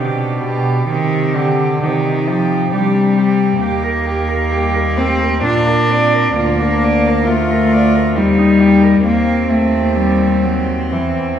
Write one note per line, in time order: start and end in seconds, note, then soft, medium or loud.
0.00 0.77 B2 soft
0.00 0.42 C3 medium
0.00 0.88 D4 medium
0.00 0.39 G4 soft
0.40 0.87 B2 medium
0.40 0.86 G4 soft
0.86 1.72 C3 medium
0.86 1.35 D#3 medium
0.86 1.83 C4 medium
0.86 1.34 G4 soft
1.34 1.84 D3 medium
1.34 1.81 G4 soft
1.81 2.63 C3 medium
1.81 2.29 D#3 medium
1.81 2.72 D#4 medium
1.81 2.27 G4 soft
2.28 2.73 F3 medium
2.28 2.72 G4 soft
2.72 3.51 C3 medium
2.72 3.59 G3 medium
2.72 3.19 D4 medium
2.72 3.16 G4 soft
3.16 3.61 C4 medium
3.16 3.60 G4 soft
3.60 5.44 D#2 medium
3.60 4.52 A#3 medium
3.60 4.98 A#3 medium
3.60 3.85 G4 medium
3.83 4.07 A#4 soft
4.06 4.30 G4 soft
4.29 4.53 A#4 soft
4.51 4.98 G3 medium
4.51 4.75 G4 medium
4.74 5.00 A#4 soft
4.96 5.45 A3 medium
4.96 5.42 C4 medium
4.96 5.22 G4 soft
5.20 5.44 A#4 soft
5.43 6.36 A#2 medium
5.43 5.89 A#3 medium
5.43 6.35 D4 medium
5.43 5.69 F4 soft
5.67 5.92 A#4 soft
5.89 6.36 C4 medium
5.89 6.15 D5 medium
6.13 6.36 A#4 soft
6.35 8.18 D2 medium
6.35 7.29 A#3 medium
6.35 7.27 D4 medium
6.35 6.62 F4 soft
6.60 6.85 A#4 soft
6.84 7.09 D5 soft
7.07 7.29 A#4 soft
7.26 8.17 A3 medium
7.26 8.17 F4 medium
7.26 7.52 F4 soft
7.51 7.74 A#4 soft
7.72 7.97 D5 soft
7.95 8.14 A#4 soft
8.15 9.04 D#2 medium
8.15 9.04 G3 medium
8.15 8.39 C4 medium
8.15 9.04 D#4 medium
8.38 8.62 D#4 soft
8.60 8.85 G4 soft
8.83 9.05 A#4 soft
9.04 10.94 D#2 medium
9.04 9.50 A#3 medium
9.04 11.39 C4 medium
9.04 10.88 C4 medium
9.49 9.97 A3 medium
9.95 10.44 G3 medium
10.42 10.94 F#3 medium
10.92 11.39 E2 soft
10.92 11.39 E3 medium
10.92 11.39 C4 soft